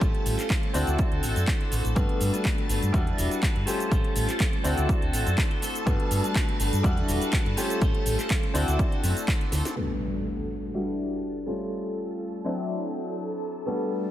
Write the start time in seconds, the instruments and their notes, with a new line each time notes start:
Already playing: grand piano A3 C#4 F4 G4, string machine A4 A5
0.00 fingered electric bass A1, clean electric guitar G3 C#4 F4 C5, kick, closed hi-hat, shaker
0.15 closed hi-hat
0.26 fingered electric bass A1, open hi-hat, shaker
0.38 clean electric guitar C#4 F4 C5, clap, closed hi-hat, shaker
0.49 clean electric guitar G3 C#4 F4 C5, kick, clap, closed hi-hat, shaker
0.63 closed hi-hat
0.73 fingered electric bass D2, clean electric guitar A3 E4 F#4 C5, grand piano C4 D4 E4 F#4, open hi-hat, shaker
0.87 fingered electric bass D2, closed hi-hat, shaker
0.99 kick, closed hi-hat, shaker
1.11 fingered electric bass D2, clean electric guitar E4 F#4 C5, closed hi-hat
1.22 fingered electric bass A1, clean electric guitar A3 E4 F#4 C5, open hi-hat, shaker
1.35 fingered electric bass F#2, clean electric guitar E4 F#4 C5, closed hi-hat, shaker
1.47 clean electric guitar A3 E4 F#4 C5, kick, clap, closed hi-hat, shaker
1.60 clean electric guitar E4 F#4 C5, closed hi-hat
1.71 fingered electric bass A1, clean electric guitar A3 E4 F#4 C5, open hi-hat, shaker
1.85 fingered electric bass A1, closed hi-hat, shaker
1.95 fingered electric bass G2, grand piano G3 A3 B3 F#4, clean electric guitar A3 D4 F#4 B4, string machine A4 A5, kick, closed hi-hat, shaker
2.09 closed hi-hat
2.21 fingered electric bass G2, open hi-hat, shaker
2.33 clean electric guitar D4 F#4 B4, closed hi-hat, shaker
2.45 clean electric guitar A3 D4 F#4 B4, kick, clap, closed hi-hat, shaker
2.58 closed hi-hat
2.69 fingered electric bass G1, clean electric guitar A3 D4 F#4 B4, open hi-hat, shaker
2.82 fingered electric bass G2, closed hi-hat, shaker
2.92 fingered electric bass E2, grand piano G3 D4 E4 F#4, clean electric guitar G3 D4 F#4 B4, kick, closed hi-hat, shaker
3.06 clean electric guitar D4 F#4 B4, closed hi-hat
3.17 fingered electric bass E1, clean electric guitar G3 D4 F#4 B4, open hi-hat, shaker
3.30 clean electric guitar D4 F#4 B4, closed hi-hat, shaker
3.42 clean electric guitar G3 D4 F#4 B4, kick, clap, closed hi-hat, shaker
3.55 fingered electric bass G2, clean electric guitar D4 F#4 B4, closed hi-hat
3.66 clean electric guitar G3 C#4 F4 C5, grand piano A3 C#4 F4 G4, open hi-hat, shaker
3.80 closed hi-hat, shaker
3.91 fingered electric bass A1, clean electric guitar G3 C#4 F4 C5, kick, closed hi-hat, shaker
4.04 closed hi-hat
4.16 fingered electric bass A1, open hi-hat, shaker
4.28 clean electric guitar C#4 F4 C5, clap, closed hi-hat, shaker
4.40 clean electric guitar G3 C#4 F4 C5, kick, clap, closed hi-hat, shaker
4.53 closed hi-hat
4.64 fingered electric bass D2, clean electric guitar A3 E4 F#4 C5, grand piano C4 D4 E4 F#4, open hi-hat, shaker
4.78 fingered electric bass D2, closed hi-hat, shaker
4.89 kick, closed hi-hat, shaker
5.01 fingered electric bass D2, clean electric guitar E4 F#4 C5, closed hi-hat
5.13 fingered electric bass A1, clean electric guitar A3 E4 F#4 C5, open hi-hat, shaker
5.26 fingered electric bass F#2, clean electric guitar E4 F#4 C5, closed hi-hat, shaker
5.37 clean electric guitar A3 E4 F#4 C5, kick, clap, closed hi-hat, shaker
5.50 clean electric guitar E4 F#4 C5, closed hi-hat
5.61 clean electric guitar A3 E4 F#4 C5, open hi-hat, shaker
5.75 closed hi-hat, shaker
5.86 fingered electric bass G2, grand piano G3 A3 B3 F#4, clean electric guitar A3 D4 F#4 B4, kick, closed hi-hat, shaker
6.00 closed hi-hat
6.11 fingered electric bass G2, open hi-hat, shaker
6.23 clean electric guitar D4 F#4 B4, closed hi-hat, shaker
6.35 clean electric guitar A3 D4 F#4 B4, kick, clap, closed hi-hat, shaker
6.49 closed hi-hat
6.59 fingered electric bass G1, clean electric guitar A3 D4 F#4 B4, open hi-hat, shaker
6.73 fingered electric bass G2, closed hi-hat, shaker
6.83 fingered electric bass E2, grand piano G3 D4 E4 F#4, clean electric guitar G3 D4 F#4 B4, kick, closed hi-hat, shaker
6.97 clean electric guitar D4 F#4 B4, closed hi-hat
7.08 fingered electric bass E1, clean electric guitar G3 D4 F#4 B4, open hi-hat, shaker
7.21 clean electric guitar D4 F#4 B4, closed hi-hat, shaker
7.32 clean electric guitar G3 D4 F#4, kick, clap, closed hi-hat, shaker
7.45 fingered electric bass G2, clean electric guitar D4 F#4 B4, closed hi-hat
7.56 clean electric guitar G3 C#4 F4 C5, grand piano A3 C#4 F4 G4, open hi-hat, shaker
7.70 closed hi-hat, shaker
7.81 fingered electric bass A1, clean electric guitar G3 C#4 F4 C5, kick, closed hi-hat, shaker
7.95 closed hi-hat
8.06 fingered electric bass A1, open hi-hat, shaker
8.18 clean electric guitar C#4 F4 C5, clap, closed hi-hat, shaker
8.30 clean electric guitar G3 C#4 F4 C5, kick, clap, closed hi-hat, shaker
8.43 closed hi-hat
8.54 fingered electric bass D2, clean electric guitar A3 E4 F#4 C5, grand piano C4 D4 E4 F#4, open hi-hat, shaker
8.68 fingered electric bass D2, closed hi-hat, shaker
8.79 kick, closed hi-hat, shaker
8.92 clean electric guitar E4 F#4 C5, closed hi-hat
9.03 fingered electric bass F#2, clean electric guitar A3 E4 F#4 C5, open hi-hat, shaker
9.17 closed hi-hat, shaker
9.28 clean electric guitar E4 F#4 C5, kick, clap, closed hi-hat, shaker
9.40 clean electric guitar E4 F#4 C5, closed hi-hat
9.52 fingered electric bass D2, clean electric guitar A3 E4 F#4 C5, snare, open hi-hat, shaker
9.65 snare, closed hi-hat, shaker
9.76 grand piano G3 A3 B3 F#4, clean electric guitar A3 D4 F#4 B4, string machine A4 A5, impact
10.25 clean electric guitar A3 D4 F#4 B4
10.74 clean electric guitar G3 D4 F#4 B4, grand piano G3 D4 E4 F#4
11.46 grand piano G3 A3 C#4 F4, clean electric guitar C#4 F4 C5
11.50 clean electric guitar G3
12.44 grand piano F#3 C4 D4 E4, clean electric guitar A3 E4 F#4 C5
12.93 clean electric guitar E4 F#4 C5
13.66 grand piano G3 A3 B3 F#4, clean electric guitar A3 D4 F#4, riser
13.70 clean electric guitar B4